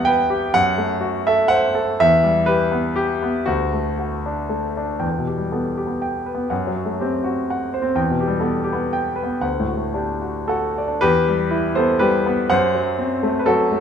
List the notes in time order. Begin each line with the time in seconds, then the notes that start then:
Already playing: E2 G3 B3 G4 E5 F#5
0.05 B4 G5
0.30 G4
0.54 F#2 F#5
0.78 A3
1.01 F#4
1.27 A4 E5
1.48 C5 F#5
1.75 A4
2.00 E2 E5
2.24 G3
2.46 G4 B4
2.72 B3
2.96 G4
3.22 B3
3.46 D2 F#4
3.73 A3
3.99 F#4
4.26 D4
4.49 A3
4.77 D4
4.99 E2 G5
5.18 B2
5.27 G4
5.38 G3
5.52 B3 A4
5.77 G4
5.87 B3
6.02 G5
6.26 B4
6.35 B3
6.50 F#2 F#5
6.67 F#3
6.76 F#4
6.85 A3
7.00 C4 G4
7.24 F#4
7.50 F#5
7.74 C5
7.82 C4
7.95 E2 G5
8.11 B2
8.20 G4
8.27 G3
8.40 B3 A4
8.64 G4
8.73 B3
8.93 G5
9.16 B4
9.23 B3
9.41 D2 F#5
9.60 A2
9.67 F#4
9.77 A3
9.94 D4 G4
10.22 F#4
10.48 F#4 A4 F#5
10.78 D5
10.88 D4
11.01 E2 G4 B4
11.28 G3
11.51 E4
11.75 B3 A4 C5
11.99 G3 G4 B4
12.26 B3
12.50 F#2 C5 F#5
12.75 F#3
12.98 C4
13.23 A3
13.39 B4
13.46 F#3 F#4 A4
13.72 A3